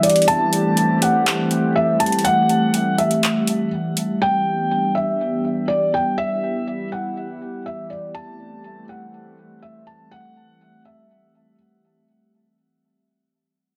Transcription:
0.00 8.11 E3 medium
0.00 8.11 G3 medium
0.00 0.24 B3 medium
0.00 0.24 D4 medium
0.00 0.24 G4 medium
0.00 0.27 D5 medium
0.00 closed hi-hat medium
0.10 closed hi-hat medium
0.16 closed hi-hat medium
0.22 closed hi-hat medium
0.28 4.17 A3 medium
0.28 4.17 C4 medium
0.28 4.17 G4 medium
0.28 0.98 A5 loud
0.28 closed hi-hat medium
0.53 closed hi-hat medium
0.77 closed hi-hat medium
1.02 1.72 F#5 medium
1.02 closed hi-hat medium
1.26 clap loud
1.26 closed hi-hat medium
1.51 closed hi-hat medium
1.76 1.99 E5 medium
2.00 2.23 A5 medium
2.00 closed hi-hat medium
2.06 closed hi-hat medium
2.12 closed hi-hat medium
2.19 closed hi-hat medium
2.24 2.94 F#5 loud
2.24 closed hi-hat medium
2.49 closed hi-hat medium
2.74 closed hi-hat medium
2.98 3.68 E5 medium
2.98 closed hi-hat medium
3.11 closed hi-hat medium
3.23 clap loud
3.23 closed hi-hat medium
3.47 closed hi-hat medium
3.97 closed hi-hat medium
4.21 8.11 B3 medium
4.21 6.16 D4 medium
4.21 12.04 G4 medium
4.21 4.91 G5 medium
4.95 5.65 E5 medium
5.68 5.92 D5 medium
5.94 6.17 G5 medium
6.18 8.13 E4 medium
6.18 6.88 E5 loud
6.92 7.62 F#5 medium
7.66 7.89 E5 medium
7.90 8.13 D5 medium
8.15 12.04 E3 medium
8.15 12.04 G3 medium
8.15 12.04 A3 medium
8.15 12.04 C4 medium
8.15 8.84 A5 loud
8.89 9.59 F#5 medium
9.62 9.86 E5 medium
9.87 10.10 A5 medium
10.11 10.81 F#5 loud
10.85 11.55 E5 medium

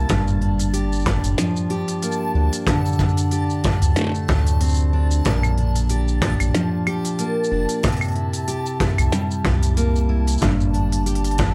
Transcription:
0.00 1.38 G3 medium
0.00 2.03 A#3 medium
0.00 0.16 E4 medium
0.00 0.73 G4 medium
0.00 11.54 A5 medium
0.09 1.19 G1 loud
0.09 2.67 G2 medium
0.09 kick loud
0.09 open hi-hat soft
0.09 shaker soft
0.28 shaker soft
0.41 1.05 D4 medium
0.41 open hi-hat soft
0.59 open hi-hat soft
0.59 shaker medium
0.73 1.70 G4 medium
0.73 open hi-hat medium
0.73 shaker medium
0.92 shaker soft
0.95 shaker soft
1.02 shaker soft
1.04 2.35 D4 medium
1.04 kick loud
1.04 open hi-hat soft
1.04 shaker soft
1.24 1.36 G1 medium
1.24 open hi-hat soft
1.24 shaker medium
1.38 2.75 F3 medium
1.38 snare medium
1.38 open hi-hat medium
1.38 shaker medium
1.56 shaker soft
1.70 3.32 G4 medium
1.70 open hi-hat soft
1.88 open hi-hat soft
1.88 shaker medium
2.03 2.75 A#3 medium
2.03 open hi-hat medium
2.03 shaker medium
2.12 shaker soft
2.35 2.50 D2 medium
2.35 2.99 D4 medium
2.53 open hi-hat soft
2.53 shaker medium
2.67 6.18 D3 medium
2.67 kick loud
2.67 open hi-hat soft
2.67 shaker soft
2.86 shaker soft
2.93 shaker soft
2.99 3.64 D4 medium
2.99 kick medium
2.99 open hi-hat soft
2.99 shaker soft
3.09 shaker soft
3.17 open hi-hat soft
3.17 shaker medium
3.31 4.28 G4 medium
3.31 open hi-hat soft
3.31 shaker medium
3.50 shaker soft
3.64 4.93 D4 medium
3.64 kick medium
3.64 open hi-hat soft
3.82 3.94 D2 medium
3.82 open hi-hat soft
3.82 shaker medium
3.96 5.33 A3 medium
3.96 snare medium
3.96 open hi-hat medium
3.96 shaker medium
3.99 snare medium
4.01 snare soft
4.04 snare soft
4.07 snare soft
4.09 snare soft
4.12 snare soft
4.12 shaker soft
4.28 5.22 D2 medium
4.28 5.90 G4 medium
4.28 kick loud
4.28 open hi-hat soft
4.47 open hi-hat soft
4.47 shaker medium
4.61 5.32 C4 medium
4.61 open hi-hat soft
4.61 shaker soft
4.64 shaker soft
4.66 shaker soft
4.69 shaker soft
4.72 shaker soft
4.74 shaker soft
4.77 shaker soft
4.93 5.57 D4 medium
5.11 shaker medium
5.25 6.35 A#1 loud
5.25 7.83 A#2 medium
5.25 kick loud
5.25 open hi-hat soft
5.25 shaker soft
5.43 claves medium
5.43 shaker soft
5.58 6.21 D4 medium
5.58 open hi-hat soft
5.76 open hi-hat soft
5.76 shaker medium
5.89 6.87 G4 medium
5.89 open hi-hat soft
5.89 shaker medium
6.08 shaker soft
6.22 7.50 D4 medium
6.22 kick loud
6.22 open hi-hat soft
6.40 6.52 A#1 medium
6.40 open hi-hat soft
6.40 claves medium
6.40 shaker medium
6.55 7.91 F3 medium
6.55 snare medium
6.55 open hi-hat medium
6.55 shaker medium
6.87 8.48 G4 medium
6.87 open hi-hat soft
6.87 claves medium
7.05 open hi-hat soft
7.05 shaker medium
7.19 8.18 A#3 medium
7.19 open hi-hat medium
7.19 shaker medium
7.44 shaker soft
7.51 7.66 F1 medium
7.51 7.91 D4 medium
7.69 open hi-hat soft
7.69 shaker medium
7.83 10.42 C3 medium
7.83 kick loud
7.83 open hi-hat soft
7.83 shaker soft
7.88 open hi-hat soft
7.92 open hi-hat soft
7.97 open hi-hat soft
8.01 open hi-hat soft
8.01 claves medium
8.01 shaker soft
8.05 open hi-hat soft
8.08 open hi-hat soft
8.12 8.79 E4 medium
8.12 open hi-hat soft
8.15 open hi-hat soft
8.33 open hi-hat soft
8.33 shaker medium
8.48 9.44 G4 medium
8.48 open hi-hat medium
8.48 shaker medium
8.66 shaker soft
8.80 10.08 E4 medium
8.80 kick medium
8.80 open hi-hat soft
8.98 9.10 C2 medium
8.98 open hi-hat soft
8.98 claves medium
8.98 shaker medium
9.12 11.54 G3 medium
9.12 snare medium
9.12 open hi-hat medium
9.12 shaker medium
9.31 shaker soft
9.45 10.38 C2 medium
9.45 11.06 G4 medium
9.45 kick loud
9.45 open hi-hat soft
9.63 open hi-hat soft
9.63 shaker medium
9.77 11.54 A#3 medium
9.77 open hi-hat medium
9.77 shaker medium
9.96 shaker soft
10.09 10.49 E4 medium
10.28 open hi-hat soft
10.28 shaker medium
10.31 shaker soft
10.38 11.54 G2 medium
10.38 shaker soft
10.42 11.52 G1 loud
10.42 kick loud
10.42 open hi-hat medium
10.42 shaker soft
10.61 shaker soft
10.74 11.38 D4 medium
10.74 open hi-hat soft
10.92 open hi-hat soft
10.92 shaker medium
11.06 11.54 G4 medium
11.06 open hi-hat medium
11.06 shaker medium
11.15 open hi-hat soft
11.24 open hi-hat soft
11.24 shaker soft
11.31 open hi-hat soft
11.38 11.54 D4 medium
11.38 kick medium
11.38 open hi-hat medium

